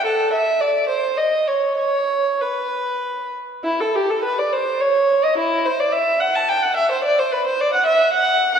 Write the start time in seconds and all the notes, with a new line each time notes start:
0.06 A4
0.33 E5
0.61 D5
0.89 C5
1.17 D#5
1.47 C#5
1.78 C#5
2.41 B4
3.64 E4
3.80 A4
3.95 G4
4.10 A4
4.24 B4
4.39 D5
4.53 C5
4.81 C#5
5.24 D#5
5.38 E4
5.65 C5
5.80 D5
5.92 E5
6.20 F#5
6.35 A5
6.49 G5
6.63 F#5
6.76 E5
6.92 C5
7.04 D5
7.19 C5
7.32 B4
7.47 C5
7.61 D5
7.74 F#5
7.86 E5
8.13 F#5
8.54 F#5